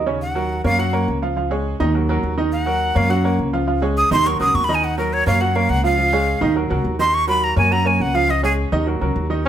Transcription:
Already playing: D#2
0.06 C#3 C#4 C#5
0.22 F#5
0.35 F#3 F#4 A#4
0.64 F#2 A#3 A#4 C#5 F5
0.79 F#3 F#4 F#5
0.93 A#3 A#4 C#5
1.08 C#2
1.22 F3 F4 F5
1.36 F3 F4 F5
1.51 G#3 G#4 C#5
1.80 D#2 D#3 D#4 D#5
1.94 F#3 F#4 A#4
2.09 F#3 F#4 A#4
2.23 D#2
2.37 D#3 D#4 D#5
2.52 F#5
2.66 F#3 F#4 A#4
2.95 F#2 A#3 A#4 C#5 F5
3.10 F#3 F#4 F#5
3.24 A#3 A#4 C#5
3.39 C#2
3.53 F3 F4 F5
3.67 F3 F4 F5
3.82 G#3 G#4 C#5
3.97 D#6
4.11 D#2 D#3 D#4 D#5 C6
4.26 F#3 F#4 A#4 C#6
4.40 C#2 F#3 F#4 A#4 D#6
4.54 D#2 C#6
4.64 B5
4.69 D#3 D#4 D#5
4.75 G#5
4.84 F#5
4.98 F#3 F#4 A#4
5.13 C#5
5.26 F#2 A#3 A#4 C#5 F5
5.41 F#3 F#4 F#5
5.55 A#3 A#4 C#5 F5
5.69 C#2 F#5
5.84 F3 F4 F5
5.98 F3 F4 F5
6.13 G#3 G#4 C#5
6.41 D#2 D#3 D#4 D#5
6.56 F#3 F#4 A#4
6.70 C#2 F#3 F#4 A#4
6.84 D#2
6.99 D#3 D#4 D#5 C6
7.14 C#6
7.27 F#3 F#4 A#4 B5
7.44 A#5
7.56 F#2 A#3 A#4 C#5 G#5
7.71 F#3 F#4 F#5 A#5
7.85 A#3 A#4 C#5 G#5
8.00 C#2 F#5
8.14 F3 F4 F5
8.28 F3 F4 D#5 F5
8.43 G#3 G#4 C#5
8.72 D#2 D#3 D#4 D#5
8.87 F#3 F#4 A#4
9.01 C#2 F#3 F#4 A#4
9.16 D#2
9.30 D#3 D#4 D#5

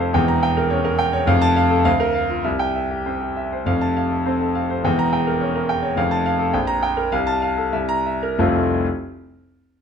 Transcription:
Already playing: F1 F2 C4 A4 F5 A5
0.00 C5
0.13 E1 E2 G5
0.28 A#5
0.43 G5
0.57 A#4
0.70 C#4 C#5
0.84 A#4
0.99 G5
1.13 C#5
1.26 F1 F2 F5
1.41 A5
1.56 F5
1.70 A4
1.85 D2 F5
2.00 A#4
2.14 F5
2.29 F4
2.44 C2 E5
2.59 G5
2.75 E5
2.91 G4
3.06 C4 C5
3.21 G4
3.36 E5
3.52 C5
3.65 F1 F2 F5
3.81 A5
3.96 F5
4.11 A4
4.26 C4 C5
4.40 A4
4.55 F5
4.70 C5
4.83 E1 E2 G5
4.99 A#5
5.13 G5
5.27 A#4
5.41 C#4 C#5
5.55 A#4
5.69 G5
5.83 C#5
5.96 F1 F2 F5
6.11 A5
6.26 F5
6.39 A4
6.53 A#1 G5
6.67 A#5
6.83 G5
6.97 A#4
7.12 C2 F5
7.27 A5
7.42 F5
7.57 A4
7.73 C2 E5
7.89 A#5
8.06 E5
8.23 A#4
8.38 F1 C2 F3 A3 C4 F4

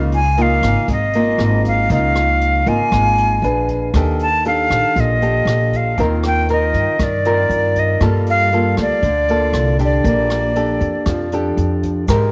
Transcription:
Already playing: C#2 C#3 A#3 D#4 F4
0.12 G#5, closed hi-hat
0.37 A#3 D#4 F4, closed hi-hat
0.42 F5
0.62 G#1, kick, cross-stick, closed hi-hat
0.88 G#1 G#3, kick, closed hi-hat
0.92 D#5
1.13 A#3 D#4 F4, closed hi-hat
1.38 G#1, cross-stick, closed hi-hat
1.65 F5, kick, closed hi-hat
1.90 C#2 C#3 A#3 D#4 F4 F5, kick, closed hi-hat
2.15 cross-stick, closed hi-hat
2.41 closed hi-hat
2.66 G#1 A#3 D#4 F4 G#5, kick, closed hi-hat
2.91 G#1 G#3, kick, cross-stick, closed hi-hat
3.18 closed hi-hat
3.42 A#1 D4 G#4 B4, closed hi-hat
3.68 kick, closed hi-hat
3.94 D#2 D#3 D4 G4 A4, kick, cross-stick, closed hi-hat
4.19 A5, closed hi-hat
4.45 D4 G4 A4 F5, closed hi-hat
4.70 A#1, kick, cross-stick, closed hi-hat
4.96 A#1 A#2, kick, closed hi-hat
5.00 D#5
5.22 G4 A4, closed hi-hat
5.45 A#1, cross-stick, closed hi-hat
5.73 F5, kick, closed hi-hat
5.98 D#2 D#3 C4 F4 A#4, kick, closed hi-hat
6.23 G5, cross-stick, closed hi-hat
6.48 C4 F4 A#4 D#5, closed hi-hat
6.74 G2, kick, closed hi-hat
6.99 G2 D#3, kick, cross-stick, closed hi-hat
7.03 D5
7.25 C4 F4 A#4, closed hi-hat
7.49 G2, closed hi-hat
7.76 D#5, kick, closed hi-hat
8.01 G2 G3 A#3 F4 A4, kick, cross-stick, closed hi-hat
8.26 F5, closed hi-hat
8.52 A#3 F4 A4, closed hi-hat
8.77 D2, kick, cross-stick, closed hi-hat
8.82 D5
9.02 D2 D3, kick, closed hi-hat
9.28 A#3 F4 A4, closed hi-hat
9.53 C2, cross-stick, closed hi-hat
9.79 D4 G4 A4, kick, closed hi-hat
9.85 D5
10.04 A#1 A#3, kick, closed hi-hat
10.30 cross-stick, closed hi-hat
10.55 D4 G4 A4, closed hi-hat
10.81 F2, kick, closed hi-hat
11.06 F2 F3, kick, cross-stick, closed hi-hat
11.32 D4 G4 A4, closed hi-hat
11.57 F2, closed hi-hat
11.83 kick, closed hi-hat
12.08 G#2 G#3 C4 G4 A#4, kick, cross-stick, closed hi-hat, shaker

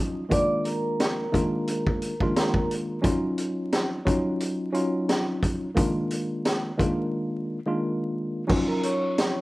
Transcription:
Already playing: F#3 C#4 D#4 F4
0.29 D#3 G#3 A#3 D4 F4 D5 D6, kick, closed hi-hat
0.64 A#4 A#5, closed hi-hat
1.00 snare, closed hi-hat
1.32 D#3 G#3 A#3 D4 F4, kick, closed hi-hat
1.68 closed hi-hat
1.87 kick
2.02 closed hi-hat
2.20 D#3 G#3 A#3 D4 F4, kick
2.36 A#4 A#5, snare, closed hi-hat
2.54 kick
2.71 closed hi-hat
3.02 F#3 C#4 D#4 F4, kick, closed hi-hat
3.38 closed hi-hat
3.72 snare, closed hi-hat
4.05 F#3 C#4 D#4 F4, kick, closed hi-hat
4.40 closed hi-hat
4.72 F#3 C#4 D#4 F4, closed hi-hat
5.09 snare, closed hi-hat
5.43 kick, closed hi-hat
5.75 D#3 G#3 A#3 D4 F4, kick, closed hi-hat
6.10 closed hi-hat
6.45 snare, closed hi-hat
6.77 D#3 G#3 A#3 D4 F4, kick, closed hi-hat
7.66 D#3 G#3 A#3 D4 F4
8.47 F#3 C#4 D#4 F4, kick, crash
8.68 A#4 A#5
8.83 C#5 C#6, closed hi-hat
9.18 snare, closed hi-hat

